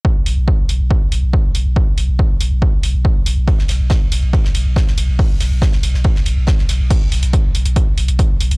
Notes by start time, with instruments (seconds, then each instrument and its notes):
0.05 kick
0.16 sub bass B1
0.26 sub bass B1, open hi-hat
0.37 sub bass B1
0.48 kick
0.58 sub bass B1
0.69 sub bass B1, open hi-hat
0.80 sub bass B1
0.91 kick
1.01 sub bass B1
1.12 sub bass B1, open hi-hat
1.23 sub bass B1
1.33 kick
1.44 sub bass B1
1.55 sub bass B1, open hi-hat
1.66 sub bass B1
1.76 kick
1.87 sub bass B1
1.98 sub bass B1, open hi-hat
2.08 sub bass B1
2.19 kick
2.30 sub bass B1
2.40 sub bass B1, open hi-hat
2.51 sub bass B1
2.62 kick
2.73 sub bass B1
2.83 sub bass B1, open hi-hat
2.94 sub bass B1
3.05 kick
3.16 sub bass B1
3.26 sub bass B1, open hi-hat
3.37 sub bass B1
3.48 kick, ride
3.58 sub bass B1, snare
3.68 sub bass B1, snare, open hi-hat, ride
3.80 sub bass B1
3.90 kick, snare, ride
4.01 sub bass B1
4.12 sub bass B1, open hi-hat, ride
4.22 sub bass B1, ride
4.33 kick, ride
4.44 sub bass B1, snare
4.54 sub bass B1, open hi-hat, ride
4.66 sub bass B1
4.76 kick, snare, ride
4.87 sub bass B1, snare
4.98 sub bass B1, open hi-hat, ride
5.08 sub bass B1
5.19 kick, open hi-hat
5.30 sub bass B1
5.40 sub bass B1, snare, open hi-hat, ride
5.51 sub bass B1
5.62 kick, snare, ride
5.72 sub bass B1, snare
5.83 sub bass B1, open hi-hat, ride
5.94 sub bass B1, snare
6.04 kick, ride
6.16 sub bass B1, snare
6.26 sub bass B1, open hi-hat, ride
6.37 sub bass B1
6.47 kick, snare, ride
6.58 sub bass B1, snare
6.69 sub bass B1, snare, open hi-hat, ride
6.80 sub bass B1
6.91 kick, closed hi-hat, crash
7.01 sub bass B1
7.12 sub bass B1, open hi-hat
7.23 sub bass B1, closed hi-hat
7.33 kick, closed hi-hat
7.44 sub bass B1
7.55 sub bass B1, open hi-hat
7.66 sub bass B1, closed hi-hat
7.76 kick, closed hi-hat
7.87 sub bass B1
7.98 sub bass B1, open hi-hat
8.08 sub bass B1, closed hi-hat
8.19 kick, closed hi-hat
8.30 sub bass B1
8.41 sub bass B1, open hi-hat
8.51 sub bass B1, closed hi-hat